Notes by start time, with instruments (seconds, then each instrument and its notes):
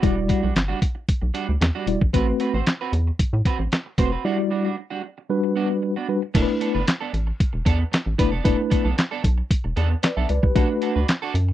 0.02 analog synth bass E1, clean electric guitar G3 D4 F#4, tine electric piano G3 E4 F#4 D5, kick, closed hi-hat
0.17 muted clean electric guitar stroke
0.28 clean electric guitar G3 D4 F#4, kick, closed hi-hat
0.42 analog synth bass B1, clean electric guitar G3 D4 F#4
0.55 analog synth bass G1, muted clean electric guitar stroke, snare, clap, closed hi-hat
0.68 clean electric guitar G3 D4 F#4
0.81 muted clean electric guitar stroke, kick, closed hi-hat
0.95 muted clean electric guitar stroke
1.09 kick, closed hi-hat
1.22 analog synth bass B1, muted clean electric guitar stroke
1.34 clean electric guitar G3 D4 F#4, closed hi-hat
1.48 analog synth bass D2, muted clean electric guitar stroke
1.61 analog synth bass E2, muted clean electric guitar stroke, snare, clap, closed hi-hat
1.75 clean electric guitar G3 D4 F#4
1.87 analog synth bass E1, tine electric piano G3 E4 F#4 D5, muted clean electric guitar stroke, closed hi-hat
2.01 analog synth bass A#1, muted clean electric guitar stroke, kick
2.13 analog synth bass A1, tine electric piano A3 C4 F#4 B4, clean electric guitar C4 F#4 B4, kick, closed hi-hat
2.28 muted clean electric guitar stroke
2.40 clean electric guitar C4 F#4 B4, closed hi-hat
2.54 analog synth bass A1, clean electric guitar C4 F#4 C5
2.66 muted clean electric guitar stroke, snare, clap, closed hi-hat
2.81 clean electric guitar C4 F#4 B4
2.93 analog synth bass E2, muted clean electric guitar stroke, closed hi-hat
3.07 muted clean electric guitar stroke
3.19 analog synth bass A2, kick, closed hi-hat
3.33 analog synth bass A2, muted clean electric guitar stroke
3.45 clean electric guitar C4 F#4 B4, kick, closed hi-hat
3.59 analog synth bass A1, muted clean electric guitar stroke
3.72 muted clean electric guitar stroke, snare, clap, closed hi-hat
3.86 muted clean electric guitar stroke
3.98 analog synth bass F1, tine electric piano A3 C4 F#4 B4, clean electric guitar C4 F#4 C5, kick, closed hi-hat
4.12 clean electric guitar C4 F#4 B4
4.24 tine electric piano G3 E4 F#4 D5, clean electric guitar G3 D4 F#4
4.39 muted clean electric guitar stroke
4.50 clean electric guitar G3 D4 F#4
4.65 clean electric guitar G3 D4 F#4
4.77 muted clean electric guitar stroke
4.90 clean electric guitar G3 D4 F#4
5.03 muted clean electric guitar stroke
5.18 muted clean electric guitar stroke
5.29 tine electric piano G3 D4 F#4 B4
5.44 muted clean electric guitar stroke
5.56 clean electric guitar B3 D4 F#4
5.70 muted clean electric guitar stroke
5.82 muted clean electric guitar stroke
5.96 clean electric guitar B3 D4 F#4
6.08 tine electric piano G3 D4 F#4 B4, muted clean electric guitar stroke
6.22 muted clean electric guitar stroke
6.34 analog synth bass E1, tine electric piano A3 D4 E4 A#4, clean electric guitar B3 D4 A4, kick, closed hi-hat, crash
6.42 tine electric piano B4
6.48 muted clean electric guitar stroke
6.60 clean electric guitar B3 D4 A4, closed hi-hat
6.74 analog synth bass G1, clean electric guitar B3 D4 B4
6.87 muted clean electric guitar stroke, snare, clap, closed hi-hat
7.01 clean electric guitar B3 D4 A4
7.13 analog synth bass A1, muted clean electric guitar stroke, closed hi-hat
7.27 muted clean electric guitar stroke
7.40 kick, closed hi-hat
7.53 analog synth bass E1, muted clean electric guitar stroke
7.65 analog synth bass E2, clean electric guitar B3 D4 A4, kick, closed hi-hat
7.80 muted clean electric guitar stroke
7.92 muted clean electric guitar stroke, snare, clap, closed hi-hat
8.06 analog synth bass A1, muted clean electric guitar stroke
8.18 analog synth bass F#1, tine electric piano A3 D4 E4 B4, clean electric guitar B3 D4 B4, kick, closed hi-hat
8.32 analog synth bass F1, clean electric guitar B3 D4 A4
8.44 analog synth bass E1, tine electric piano A3 D4 E4 B4, clean electric guitar B3 D4 A4, kick, closed hi-hat
8.58 muted clean electric guitar stroke
8.70 clean electric guitar B3 D4 A4, kick, closed hi-hat
8.85 analog synth bass B1, clean electric guitar B3 D4 A4
8.97 muted clean electric guitar stroke, snare, clap, closed hi-hat
9.11 clean electric guitar B3 D4 A4
9.23 analog synth bass B1, muted clean electric guitar stroke, kick, closed hi-hat
9.38 muted clean electric guitar stroke
9.51 kick, closed hi-hat
9.64 analog synth bass E1, muted clean electric guitar stroke
9.76 analog synth bass E2, clean electric guitar B3 D4 A4, closed hi-hat
9.90 muted clean electric guitar stroke
10.03 tine electric piano B4 D5, muted clean electric guitar stroke, snare, clap, closed hi-hat
10.17 analog synth bass B1, clean electric guitar B3 D4 A4, tine electric piano E5
10.29 analog synth bass C#2, tine electric piano B4 D5, muted clean electric guitar stroke, closed hi-hat
10.43 analog synth bass C2, tine electric piano G4 B4, muted clean electric guitar stroke, kick
10.55 analog synth bass B1, tine electric piano A3 D4 F#4 B4, clean electric guitar D4 F#4 A4, kick, closed hi-hat
10.70 muted clean electric guitar stroke
10.82 clean electric guitar D4 F#4 A4, closed hi-hat
10.96 analog synth bass D2, clean electric guitar D4 F#4 B4
11.08 muted clean electric guitar stroke, snare, clap, closed hi-hat
11.22 clean electric guitar D4 F#4 A4
11.34 analog synth bass F#2, muted clean electric guitar stroke, closed hi-hat
11.48 muted clean electric guitar stroke